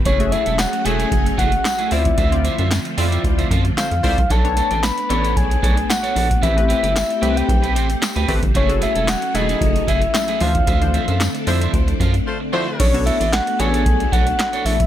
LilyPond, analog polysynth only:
\new Staff \with { instrumentName = "Analog polysynth" } { \time 4/4 \key b \dorian \tempo 4 = 113 <gis' e''>16 <a fis' gis' e''>8 r8. <a fis' gis' e''>4 r4 <c' e' f' d''>8 | r16 <c' e' f' d''>8 r8. <c' e' f' d''>4 r4 <c' e' f' d''>16 r16 | <a' cis''>16 <b d' a' cis''>8 r8. <b d' a' cis''>4 r4. | <g' b'>16 <a c' g' b'>8 r8. <a c' g' b'>4 r4 <a c' g' b'>16 r16 |
<fis' a'>16 <e' fis' gis' a'>8 r8. <e' fis' gis' a'>4 r4 <e f d' c''>8 | r16 <e f d' c''>8 r8. <f d' e' c''>4 r4 <f d' e' c''>16 r16 | <a' cis''>16 <b d' fis' a' cis''>8 r8. <b d' fis' a' cis''>4 r4. | }